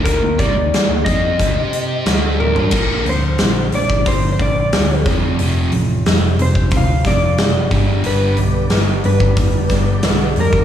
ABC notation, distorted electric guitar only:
X:1
M:4/4
L:1/16
Q:1/4=90
K:Bblyd
V:1 name="Distorted electric guitar" clef=bass
[D,A,D] [_E,B,] [C,G,] [E,B,] z [E,B,] [F,CF]2 [D,A,] [CGc]3 [D,A,D]3 [G,D] | [B,,D,B,]2 [B,,D,]2 [B,,D,]2 [B,,D,]2 [B,,D,]2 [B,,D,]2 [B,,D,]2 [F,,C,F,]2 | [F,,C,F,]2 [F,,C,]2 [F,,C,]2 [F,,C,]2 [F,,C,]2 [F,,C,]2 [F,,C,]2 [G,,D,G,]2 | [G,,D,G,]2 [G,,D,]2 [G,,D,]2 [G,,D,]2 [G,,D,]2 [G,,D,]2 [G,,D,]2 [G,,D,]2 |]